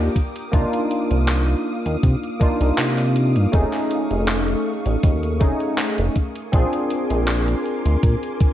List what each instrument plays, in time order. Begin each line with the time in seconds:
Already playing: tine electric piano A#3 D4 F4 G4, string machine A#4 G5 D6 D#6
0.16 string machine F5, kick, closed hi-hat
0.36 closed hi-hat
0.52 analog synth bass C2, tine electric piano A#3 D4 D#4 F4, kick, closed hi-hat
0.73 closed hi-hat
0.91 closed hi-hat
1.11 analog synth bass C2, closed hi-hat
1.28 clap, closed hi-hat
1.48 closed hi-hat
1.86 analog synth bass D#2, closed hi-hat
2.03 analog synth bass C3, kick, closed hi-hat
2.24 closed hi-hat
2.40 tine electric piano A#3 D4 D#4 F4, kick, closed hi-hat
2.61 analog synth bass C2, closed hi-hat
2.78 analog synth bass C3, clap, closed hi-hat
2.98 clap, closed hi-hat
3.16 closed hi-hat
3.36 analog synth bass G2, closed hi-hat
3.52 analog synth bass F1, tine electric piano A3 C#4 D#4 G#4, string machine A3 C#6, kick, closed hi-hat
3.73 clap, closed hi-hat
3.91 closed hi-hat
4.11 analog synth bass F1, closed hi-hat
4.28 clap, closed hi-hat
4.48 closed hi-hat
4.86 analog synth bass A1, closed hi-hat
5.03 analog synth bass D#2, kick, closed hi-hat
5.23 closed hi-hat
5.40 analog synth bass F1, tine electric piano A3 C#4 D#4 G#4, kick, closed hi-hat
5.60 closed hi-hat
5.78 clap, closed hi-hat
5.98 analog synth bass F1, closed hi-hat
6.16 string machine A#4 G#5 C6 D6, kick, closed hi-hat
6.36 closed hi-hat
6.52 analog synth bass A#1, tine electric piano C4 D4 F4 G#4, kick, closed hi-hat
6.73 closed hi-hat
6.90 closed hi-hat
7.10 analog synth bass A#1, closed hi-hat
7.28 clap, closed hi-hat
7.48 closed hi-hat
7.66 closed hi-hat
7.86 analog synth bass D2, closed hi-hat
8.03 analog synth bass A#2, kick, closed hi-hat
8.23 closed hi-hat
8.40 kick, closed hi-hat